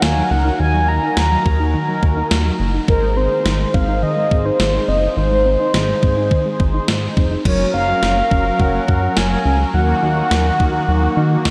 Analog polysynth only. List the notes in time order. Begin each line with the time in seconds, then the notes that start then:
Already playing: D#4 F#4 A#4
2.88 D#4 G#4 C5
7.45 C#4 F#4 A#4
9.74 D#4 F#4 A#4